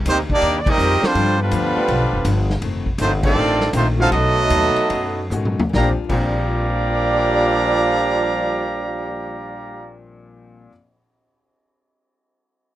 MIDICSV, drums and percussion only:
0, 0, Header, 1, 2, 480
1, 0, Start_track
1, 0, Key_signature, -2, "major"
1, 0, Tempo, 366748
1, 1517, Time_signature, 4, 2, 24, 8
1, 4400, Tempo, 386847
1, 6320, Tempo, 429799
1, 15078, End_track
2, 0, Start_track
2, 0, Title_t, "Drums"
2, 72, Note_on_c, 9, 44, 55
2, 72, Note_on_c, 9, 51, 89
2, 75, Note_on_c, 9, 36, 25
2, 203, Note_off_c, 9, 44, 0
2, 203, Note_off_c, 9, 51, 0
2, 206, Note_off_c, 9, 36, 0
2, 390, Note_on_c, 9, 36, 66
2, 521, Note_off_c, 9, 36, 0
2, 545, Note_on_c, 9, 51, 64
2, 551, Note_on_c, 9, 36, 20
2, 676, Note_off_c, 9, 51, 0
2, 682, Note_off_c, 9, 36, 0
2, 868, Note_on_c, 9, 36, 100
2, 873, Note_on_c, 9, 49, 84
2, 999, Note_off_c, 9, 36, 0
2, 1003, Note_off_c, 9, 49, 0
2, 1034, Note_on_c, 9, 44, 64
2, 1165, Note_off_c, 9, 44, 0
2, 1354, Note_on_c, 9, 38, 74
2, 1484, Note_off_c, 9, 38, 0
2, 1507, Note_on_c, 9, 51, 58
2, 1511, Note_on_c, 9, 36, 19
2, 1638, Note_off_c, 9, 51, 0
2, 1642, Note_off_c, 9, 36, 0
2, 1981, Note_on_c, 9, 44, 60
2, 1981, Note_on_c, 9, 51, 75
2, 1988, Note_on_c, 9, 36, 21
2, 2112, Note_off_c, 9, 44, 0
2, 2112, Note_off_c, 9, 51, 0
2, 2119, Note_off_c, 9, 36, 0
2, 2464, Note_on_c, 9, 51, 59
2, 2467, Note_on_c, 9, 36, 26
2, 2594, Note_off_c, 9, 51, 0
2, 2598, Note_off_c, 9, 36, 0
2, 2941, Note_on_c, 9, 44, 65
2, 2941, Note_on_c, 9, 51, 81
2, 2947, Note_on_c, 9, 36, 22
2, 3072, Note_off_c, 9, 44, 0
2, 3072, Note_off_c, 9, 51, 0
2, 3078, Note_off_c, 9, 36, 0
2, 3271, Note_on_c, 9, 38, 46
2, 3401, Note_off_c, 9, 38, 0
2, 3426, Note_on_c, 9, 51, 70
2, 3430, Note_on_c, 9, 36, 19
2, 3557, Note_off_c, 9, 51, 0
2, 3560, Note_off_c, 9, 36, 0
2, 3746, Note_on_c, 9, 36, 59
2, 3877, Note_off_c, 9, 36, 0
2, 3904, Note_on_c, 9, 44, 63
2, 3904, Note_on_c, 9, 51, 86
2, 3910, Note_on_c, 9, 36, 22
2, 4035, Note_off_c, 9, 44, 0
2, 4035, Note_off_c, 9, 51, 0
2, 4040, Note_off_c, 9, 36, 0
2, 4230, Note_on_c, 9, 49, 92
2, 4232, Note_on_c, 9, 36, 95
2, 4361, Note_off_c, 9, 49, 0
2, 4362, Note_off_c, 9, 36, 0
2, 4704, Note_on_c, 9, 38, 47
2, 4828, Note_off_c, 9, 38, 0
2, 4860, Note_on_c, 9, 44, 68
2, 4860, Note_on_c, 9, 51, 80
2, 4863, Note_on_c, 9, 36, 24
2, 4984, Note_off_c, 9, 44, 0
2, 4984, Note_off_c, 9, 51, 0
2, 4988, Note_off_c, 9, 36, 0
2, 5337, Note_on_c, 9, 51, 67
2, 5339, Note_on_c, 9, 36, 28
2, 5461, Note_off_c, 9, 51, 0
2, 5463, Note_off_c, 9, 36, 0
2, 5814, Note_on_c, 9, 44, 57
2, 5814, Note_on_c, 9, 51, 88
2, 5820, Note_on_c, 9, 36, 29
2, 5938, Note_off_c, 9, 44, 0
2, 5938, Note_off_c, 9, 51, 0
2, 5944, Note_off_c, 9, 36, 0
2, 6137, Note_on_c, 9, 51, 54
2, 6261, Note_off_c, 9, 51, 0
2, 6306, Note_on_c, 9, 51, 65
2, 6315, Note_on_c, 9, 36, 22
2, 6419, Note_off_c, 9, 51, 0
2, 6427, Note_off_c, 9, 36, 0
2, 6768, Note_on_c, 9, 44, 70
2, 6773, Note_on_c, 9, 47, 58
2, 6879, Note_off_c, 9, 44, 0
2, 6885, Note_off_c, 9, 47, 0
2, 6928, Note_on_c, 9, 47, 74
2, 7040, Note_off_c, 9, 47, 0
2, 7087, Note_on_c, 9, 43, 102
2, 7198, Note_off_c, 9, 43, 0
2, 7243, Note_on_c, 9, 38, 69
2, 7245, Note_on_c, 9, 36, 49
2, 7354, Note_off_c, 9, 38, 0
2, 7356, Note_off_c, 9, 36, 0
2, 7643, Note_on_c, 9, 49, 66
2, 7644, Note_on_c, 9, 36, 60
2, 7754, Note_off_c, 9, 49, 0
2, 7756, Note_off_c, 9, 36, 0
2, 15078, End_track
0, 0, End_of_file